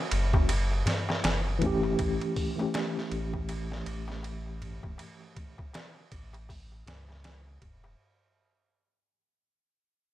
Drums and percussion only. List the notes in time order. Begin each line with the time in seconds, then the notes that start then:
0.11 ride
0.34 kick, darbuka tek
0.49 ride, darbuka tek
0.71 darbuka tek
0.86 snare, ride, darbuka dum
1.09 snare, darbuka tek
1.24 snare, ride, darbuka tek
1.47 darbuka tek
1.62 kick, ride, darbuka dum
1.83 darbuka tek
1.99 kick, ride, darbuka tek
2.21 ride, darbuka tek
2.36 kick, open hi-hat
2.59 darbuka tek
2.74 snare, ride, darbuka tek
2.97 snare, darbuka tek
3.12 ride
3.33 kick, darbuka tek
3.49 ride, darbuka tek
3.71 snare, darbuka tek
3.86 ride
4.08 snare, darbuka tek
4.23 ride, darbuka tek
4.46 darbuka tek
4.61 ride, darbuka dum
4.83 kick, darbuka tek
4.98 ride, darbuka tek
5.20 darbuka tek
5.37 kick, ride
5.58 kick, darbuka tek
5.73 snare, ride, darbuka tek
5.96 darbuka tek
6.12 kick, ride
6.33 ride, darbuka tek
6.49 kick, open hi-hat, darbuka tek
6.72 darbuka tek
6.87 snare, ride, darbuka dum
7.09 snare, darbuka tek
7.24 snare, ride, darbuka tek
7.47 darbuka tek
7.62 kick, ride, darbuka dum
7.84 darbuka tek